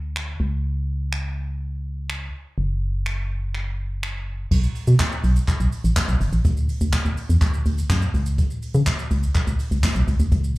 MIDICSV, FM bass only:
0, 0, Header, 1, 2, 480
1, 0, Start_track
1, 0, Tempo, 483871
1, 637, Time_signature, 4, 2, 24, 8
1, 10495, End_track
2, 0, Start_track
2, 0, Title_t, "FM bass"
2, 0, Program_c, 0, 39
2, 0, Note_on_c, 0, 38, 86
2, 357, Note_off_c, 0, 38, 0
2, 396, Note_on_c, 0, 37, 83
2, 2277, Note_off_c, 0, 37, 0
2, 2557, Note_on_c, 0, 30, 89
2, 4437, Note_off_c, 0, 30, 0
2, 4477, Note_on_c, 0, 35, 112
2, 4630, Note_off_c, 0, 35, 0
2, 4836, Note_on_c, 0, 47, 93
2, 4913, Note_off_c, 0, 47, 0
2, 5196, Note_on_c, 0, 35, 95
2, 5350, Note_off_c, 0, 35, 0
2, 5557, Note_on_c, 0, 35, 89
2, 5633, Note_off_c, 0, 35, 0
2, 5797, Note_on_c, 0, 33, 93
2, 5874, Note_off_c, 0, 33, 0
2, 6037, Note_on_c, 0, 35, 84
2, 6113, Note_off_c, 0, 35, 0
2, 6156, Note_on_c, 0, 31, 96
2, 6233, Note_off_c, 0, 31, 0
2, 6276, Note_on_c, 0, 33, 79
2, 6353, Note_off_c, 0, 33, 0
2, 6397, Note_on_c, 0, 38, 118
2, 6627, Note_off_c, 0, 38, 0
2, 6757, Note_on_c, 0, 38, 102
2, 6833, Note_off_c, 0, 38, 0
2, 6996, Note_on_c, 0, 38, 94
2, 7073, Note_off_c, 0, 38, 0
2, 7237, Note_on_c, 0, 40, 85
2, 7313, Note_off_c, 0, 40, 0
2, 7356, Note_on_c, 0, 38, 98
2, 7510, Note_off_c, 0, 38, 0
2, 7596, Note_on_c, 0, 38, 90
2, 7750, Note_off_c, 0, 38, 0
2, 7835, Note_on_c, 0, 42, 94
2, 7989, Note_off_c, 0, 42, 0
2, 8077, Note_on_c, 0, 37, 99
2, 8384, Note_off_c, 0, 37, 0
2, 8676, Note_on_c, 0, 49, 100
2, 8753, Note_off_c, 0, 49, 0
2, 9036, Note_on_c, 0, 37, 101
2, 9190, Note_off_c, 0, 37, 0
2, 9396, Note_on_c, 0, 37, 94
2, 9473, Note_off_c, 0, 37, 0
2, 9636, Note_on_c, 0, 37, 86
2, 9713, Note_off_c, 0, 37, 0
2, 9876, Note_on_c, 0, 35, 89
2, 9953, Note_off_c, 0, 35, 0
2, 9996, Note_on_c, 0, 37, 99
2, 10073, Note_off_c, 0, 37, 0
2, 10116, Note_on_c, 0, 38, 87
2, 10193, Note_off_c, 0, 38, 0
2, 10236, Note_on_c, 0, 37, 114
2, 10467, Note_off_c, 0, 37, 0
2, 10495, End_track
0, 0, End_of_file